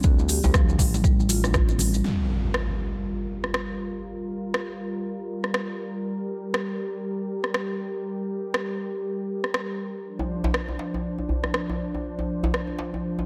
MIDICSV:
0, 0, Header, 1, 7, 480
1, 0, Start_track
1, 0, Key_signature, -2, "minor"
1, 0, Tempo, 500000
1, 39, Time_signature, 4, 2, 24, 8
1, 12727, End_track
2, 0, Start_track
2, 0, Title_t, "Analog synth pad"
2, 0, Program_c, 0, 89
2, 1960, Note_on_c, 0, 55, 78
2, 1961, Note_on_c, 0, 70, 88
2, 1962, Note_on_c, 0, 65, 71
2, 5762, Note_off_c, 0, 65, 0
2, 5800, Note_on_c, 0, 67, 70
2, 9601, Note_off_c, 0, 67, 0
2, 9602, Note_off_c, 0, 55, 0
2, 9602, Note_off_c, 0, 70, 0
2, 9640, Note_on_c, 0, 53, 77
2, 9641, Note_on_c, 0, 62, 70
2, 9641, Note_on_c, 0, 72, 86
2, 12727, Note_off_c, 0, 53, 0
2, 12727, Note_off_c, 0, 62, 0
2, 12727, Note_off_c, 0, 72, 0
2, 12727, End_track
3, 0, Start_track
3, 0, Title_t, "Marimba"
3, 0, Program_c, 1, 12
3, 40, Note_on_c, 1, 50, 84
3, 167, Note_off_c, 1, 50, 0
3, 280, Note_on_c, 1, 67, 75
3, 356, Note_off_c, 1, 67, 0
3, 422, Note_on_c, 1, 55, 76
3, 475, Note_off_c, 1, 55, 0
3, 521, Note_on_c, 1, 53, 100
3, 648, Note_off_c, 1, 53, 0
3, 904, Note_on_c, 1, 55, 75
3, 956, Note_off_c, 1, 55, 0
3, 1003, Note_on_c, 1, 55, 82
3, 1077, Note_off_c, 1, 55, 0
3, 1241, Note_on_c, 1, 65, 106
3, 1316, Note_off_c, 1, 65, 0
3, 1382, Note_on_c, 1, 62, 75
3, 1470, Note_off_c, 1, 62, 0
3, 1479, Note_on_c, 1, 65, 102
3, 1607, Note_off_c, 1, 65, 0
3, 1623, Note_on_c, 1, 60, 74
3, 1711, Note_off_c, 1, 60, 0
3, 1720, Note_on_c, 1, 55, 77
3, 1796, Note_off_c, 1, 55, 0
3, 1863, Note_on_c, 1, 55, 75
3, 1956, Note_off_c, 1, 55, 0
3, 12727, End_track
4, 0, Start_track
4, 0, Title_t, "Analog synth bass"
4, 0, Program_c, 2, 38
4, 40, Note_on_c, 2, 38, 100
4, 383, Note_off_c, 2, 38, 0
4, 422, Note_on_c, 2, 38, 99
4, 734, Note_off_c, 2, 38, 0
4, 760, Note_on_c, 2, 33, 86
4, 1236, Note_off_c, 2, 33, 0
4, 1242, Note_on_c, 2, 33, 88
4, 1934, Note_off_c, 2, 33, 0
4, 12727, End_track
5, 0, Start_track
5, 0, Title_t, "Impact"
5, 0, Program_c, 3, 103
5, 1960, Note_on_c, 3, 60, 69
5, 3880, Note_off_c, 3, 60, 0
5, 12727, End_track
6, 0, Start_track
6, 0, Title_t, "Djembe"
6, 188, Note_on_c, 9, 63, 87
6, 284, Note_off_c, 9, 63, 0
6, 422, Note_on_c, 9, 62, 77
6, 425, Note_on_c, 9, 63, 70
6, 427, Note_on_c, 9, 64, 98
6, 518, Note_off_c, 9, 62, 0
6, 521, Note_off_c, 9, 63, 0
6, 523, Note_off_c, 9, 64, 0
6, 663, Note_on_c, 9, 63, 91
6, 755, Note_on_c, 9, 62, 75
6, 759, Note_off_c, 9, 63, 0
6, 851, Note_off_c, 9, 62, 0
6, 904, Note_on_c, 9, 63, 87
6, 1000, Note_off_c, 9, 63, 0
6, 1148, Note_on_c, 9, 63, 64
6, 1244, Note_off_c, 9, 63, 0
6, 1385, Note_on_c, 9, 63, 92
6, 1480, Note_on_c, 9, 64, 94
6, 1481, Note_off_c, 9, 63, 0
6, 1576, Note_off_c, 9, 64, 0
6, 1616, Note_on_c, 9, 63, 82
6, 1712, Note_off_c, 9, 63, 0
6, 1868, Note_on_c, 9, 63, 60
6, 1964, Note_off_c, 9, 63, 0
6, 9786, Note_on_c, 9, 63, 89
6, 9882, Note_off_c, 9, 63, 0
6, 10022, Note_on_c, 9, 64, 81
6, 10025, Note_on_c, 9, 62, 77
6, 10025, Note_on_c, 9, 63, 66
6, 10118, Note_off_c, 9, 64, 0
6, 10121, Note_off_c, 9, 62, 0
6, 10121, Note_off_c, 9, 63, 0
6, 10258, Note_on_c, 9, 63, 77
6, 10354, Note_off_c, 9, 63, 0
6, 10360, Note_on_c, 9, 62, 66
6, 10456, Note_off_c, 9, 62, 0
6, 10505, Note_on_c, 9, 63, 82
6, 10601, Note_off_c, 9, 63, 0
6, 10737, Note_on_c, 9, 63, 63
6, 10833, Note_off_c, 9, 63, 0
6, 10839, Note_on_c, 9, 64, 80
6, 10935, Note_off_c, 9, 64, 0
6, 10976, Note_on_c, 9, 63, 77
6, 11072, Note_off_c, 9, 63, 0
6, 11227, Note_on_c, 9, 63, 80
6, 11323, Note_off_c, 9, 63, 0
6, 11466, Note_on_c, 9, 63, 67
6, 11562, Note_off_c, 9, 63, 0
6, 11700, Note_on_c, 9, 63, 86
6, 11796, Note_off_c, 9, 63, 0
6, 11937, Note_on_c, 9, 64, 93
6, 11940, Note_on_c, 9, 62, 67
6, 11943, Note_on_c, 9, 63, 76
6, 12033, Note_off_c, 9, 64, 0
6, 12036, Note_off_c, 9, 62, 0
6, 12039, Note_off_c, 9, 63, 0
6, 12168, Note_on_c, 9, 63, 52
6, 12264, Note_off_c, 9, 63, 0
6, 12274, Note_on_c, 9, 62, 72
6, 12370, Note_off_c, 9, 62, 0
6, 12421, Note_on_c, 9, 63, 76
6, 12517, Note_off_c, 9, 63, 0
6, 12659, Note_on_c, 9, 63, 83
6, 12727, Note_off_c, 9, 63, 0
6, 12727, End_track
7, 0, Start_track
7, 0, Title_t, "Drums"
7, 31, Note_on_c, 9, 70, 51
7, 40, Note_on_c, 9, 36, 112
7, 40, Note_on_c, 9, 62, 52
7, 127, Note_off_c, 9, 70, 0
7, 136, Note_off_c, 9, 36, 0
7, 136, Note_off_c, 9, 62, 0
7, 180, Note_on_c, 9, 70, 27
7, 275, Note_off_c, 9, 70, 0
7, 275, Note_on_c, 9, 70, 92
7, 280, Note_on_c, 9, 46, 91
7, 371, Note_off_c, 9, 70, 0
7, 376, Note_off_c, 9, 46, 0
7, 418, Note_on_c, 9, 70, 38
7, 422, Note_on_c, 9, 63, 59
7, 514, Note_off_c, 9, 70, 0
7, 518, Note_off_c, 9, 63, 0
7, 519, Note_on_c, 9, 36, 113
7, 519, Note_on_c, 9, 37, 100
7, 521, Note_on_c, 9, 62, 38
7, 522, Note_on_c, 9, 63, 85
7, 526, Note_on_c, 9, 70, 45
7, 615, Note_off_c, 9, 36, 0
7, 615, Note_off_c, 9, 37, 0
7, 617, Note_off_c, 9, 62, 0
7, 618, Note_off_c, 9, 63, 0
7, 622, Note_off_c, 9, 70, 0
7, 662, Note_on_c, 9, 70, 25
7, 758, Note_off_c, 9, 70, 0
7, 759, Note_on_c, 9, 36, 59
7, 759, Note_on_c, 9, 63, 61
7, 760, Note_on_c, 9, 46, 90
7, 764, Note_on_c, 9, 70, 86
7, 855, Note_off_c, 9, 36, 0
7, 855, Note_off_c, 9, 63, 0
7, 856, Note_off_c, 9, 46, 0
7, 860, Note_off_c, 9, 70, 0
7, 905, Note_on_c, 9, 62, 53
7, 905, Note_on_c, 9, 70, 34
7, 999, Note_on_c, 9, 36, 112
7, 1001, Note_off_c, 9, 62, 0
7, 1001, Note_off_c, 9, 70, 0
7, 1002, Note_on_c, 9, 70, 52
7, 1095, Note_off_c, 9, 36, 0
7, 1098, Note_off_c, 9, 70, 0
7, 1150, Note_on_c, 9, 70, 27
7, 1240, Note_on_c, 9, 46, 94
7, 1240, Note_on_c, 9, 62, 41
7, 1243, Note_off_c, 9, 70, 0
7, 1243, Note_on_c, 9, 70, 88
7, 1336, Note_off_c, 9, 46, 0
7, 1336, Note_off_c, 9, 62, 0
7, 1339, Note_off_c, 9, 70, 0
7, 1382, Note_on_c, 9, 37, 60
7, 1385, Note_on_c, 9, 70, 38
7, 1477, Note_off_c, 9, 70, 0
7, 1477, Note_on_c, 9, 70, 51
7, 1478, Note_off_c, 9, 37, 0
7, 1479, Note_on_c, 9, 36, 116
7, 1479, Note_on_c, 9, 37, 104
7, 1485, Note_on_c, 9, 64, 108
7, 1573, Note_off_c, 9, 70, 0
7, 1575, Note_off_c, 9, 36, 0
7, 1575, Note_off_c, 9, 37, 0
7, 1581, Note_off_c, 9, 64, 0
7, 1619, Note_on_c, 9, 62, 52
7, 1623, Note_on_c, 9, 70, 24
7, 1715, Note_off_c, 9, 62, 0
7, 1717, Note_on_c, 9, 64, 90
7, 1719, Note_off_c, 9, 70, 0
7, 1719, Note_on_c, 9, 46, 92
7, 1727, Note_on_c, 9, 70, 78
7, 1813, Note_off_c, 9, 64, 0
7, 1815, Note_off_c, 9, 46, 0
7, 1823, Note_off_c, 9, 70, 0
7, 1861, Note_on_c, 9, 70, 41
7, 1957, Note_off_c, 9, 70, 0
7, 2441, Note_on_c, 9, 37, 97
7, 2537, Note_off_c, 9, 37, 0
7, 3301, Note_on_c, 9, 37, 59
7, 3397, Note_off_c, 9, 37, 0
7, 3400, Note_on_c, 9, 37, 97
7, 3496, Note_off_c, 9, 37, 0
7, 4360, Note_on_c, 9, 37, 97
7, 4456, Note_off_c, 9, 37, 0
7, 5222, Note_on_c, 9, 37, 59
7, 5318, Note_off_c, 9, 37, 0
7, 5320, Note_on_c, 9, 37, 102
7, 5416, Note_off_c, 9, 37, 0
7, 6279, Note_on_c, 9, 37, 103
7, 6375, Note_off_c, 9, 37, 0
7, 7142, Note_on_c, 9, 37, 62
7, 7238, Note_off_c, 9, 37, 0
7, 7242, Note_on_c, 9, 37, 102
7, 7338, Note_off_c, 9, 37, 0
7, 8200, Note_on_c, 9, 37, 100
7, 8296, Note_off_c, 9, 37, 0
7, 9062, Note_on_c, 9, 37, 61
7, 9158, Note_off_c, 9, 37, 0
7, 9160, Note_on_c, 9, 37, 99
7, 9256, Note_off_c, 9, 37, 0
7, 10120, Note_on_c, 9, 37, 99
7, 10216, Note_off_c, 9, 37, 0
7, 10980, Note_on_c, 9, 37, 59
7, 11076, Note_off_c, 9, 37, 0
7, 11079, Note_on_c, 9, 37, 95
7, 11175, Note_off_c, 9, 37, 0
7, 12038, Note_on_c, 9, 37, 95
7, 12134, Note_off_c, 9, 37, 0
7, 12727, End_track
0, 0, End_of_file